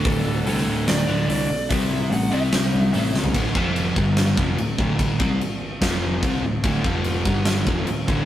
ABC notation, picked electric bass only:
X:1
M:4/4
L:1/8
Q:1/4=146
K:Clyd
V:1 name="Picked electric bass" clef=bass
D,,, D,,, C,, D,,, D,,, D,,, C,, B,,, | C,, C,, A,,, C,, C,, C,, A,,, ^C,, | D,,, =F,,,2 G,,,2 F,,, D,,, D,,,- | D,,, C,, z2 =F,,,2 C,, D,,, |
D,,, =F,,,2 G,,,2 F,,, D,,, D,,, |]